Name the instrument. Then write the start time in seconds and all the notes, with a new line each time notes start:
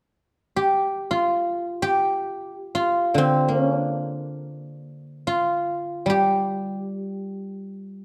guzheng
0.56 G4
1.11 F4
1.82 G4
2.75 F4
3.14 D3 C4
3.48 A#3
3.56 C#4
3.79 D4
5.27 F4
6.06 G3 G4